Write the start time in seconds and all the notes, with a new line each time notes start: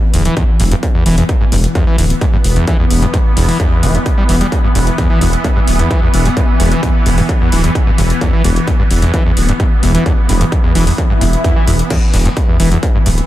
Already playing: E3 B3
0.14 D1 E2, open hi-hat
0.25 E3, closed hi-hat
0.37 E2, kick, closed hi-hat
0.60 E1 G2, open hi-hat
0.71 G2, closed hi-hat
0.83 kick, closed hi-hat
0.95 E2
1.06 E1 E3, open hi-hat
1.18 E2, closed hi-hat
1.29 kick, closed hi-hat
1.41 G2
1.52 E1 G2, open hi-hat
1.64 closed hi-hat
1.75 E2, kick, closed hi-hat
1.87 E3
1.98 D1 E2, open hi-hat
2.10 closed hi-hat
2.21 G2, kick, closed hi-hat
2.33 G2
2.44 E1, open hi-hat
2.56 E2, closed hi-hat
2.67 E3, kick, closed hi-hat
2.79 E2
2.91 E1, open hi-hat
3.02 G2, closed hi-hat
3.13 G2, kick, closed hi-hat
3.37 E1 E2, open hi-hat
3.48 E3, open hi-hat
3.60 E2, kick, closed hi-hat
3.83 E1 E3, open hi-hat
3.95 D2, closed hi-hat
4.06 kick, closed hi-hat
4.18 G3
4.29 E1 E3, open hi-hat
4.41 G3, closed hi-hat
4.52 kick, closed hi-hat
4.64 G2
4.75 E1 G2, open hi-hat
4.87 closed hi-hat
4.98 E2, kick, closed hi-hat
5.10 E3
5.21 E1 E2, open hi-hat
5.33 closed hi-hat
5.44 G2, kick, closed hi-hat
5.56 G2
5.67 D1, open hi-hat
5.79 E2, closed hi-hat
5.90 E3, kick, closed hi-hat
6.02 E2
6.14 E1, open hi-hat
6.25 G2, closed hi-hat
6.37 G2, kick, closed hi-hat
6.60 E1 E2, open hi-hat
6.72 E3, closed hi-hat
6.83 E2, kick, closed hi-hat
7.06 E1 G2, open hi-hat
7.18 G2, open hi-hat
7.29 kick, closed hi-hat
7.41 E2
7.52 D1 E3, open hi-hat
7.64 E2, closed hi-hat
7.75 kick, closed hi-hat
7.87 G2
7.98 E1 G2, open hi-hat
8.10 closed hi-hat
8.21 E2, kick, closed hi-hat
8.33 E3
8.44 E1 E2, open hi-hat
8.56 closed hi-hat
8.67 G2, kick, closed hi-hat
8.79 G2
8.91 E1, open hi-hat
9.02 E2, closed hi-hat
9.14 E3, kick, closed hi-hat
9.26 E2
9.37 D1, open hi-hat
9.49 G2, closed hi-hat
9.60 G2, kick, closed hi-hat
9.83 E1 E2, open hi-hat
9.95 E3, closed hi-hat
10.06 E2, kick, closed hi-hat
10.29 E1 G2, open hi-hat
10.41 G2, closed hi-hat
10.52 kick, closed hi-hat
10.64 E2
10.75 E1 E3, open hi-hat
10.87 E2, open hi-hat
10.98 kick, closed hi-hat, swell
11.10 G2
11.21 E1 G2, open hi-hat
11.33 closed hi-hat
11.44 E2, kick, closed hi-hat
11.56 E3
11.67 E1 E2, open hi-hat
11.79 closed hi-hat
11.90 E2 E3 B3, kick, closed hi-hat, crash
12.14 E1 G2, open hi-hat
12.25 G2, closed hi-hat
12.37 kick, closed hi-hat
12.48 E2
12.60 E1 E3, open hi-hat
12.72 E2, closed hi-hat
12.83 kick, closed hi-hat
12.95 G2
13.06 D1 G2, open hi-hat
13.18 closed hi-hat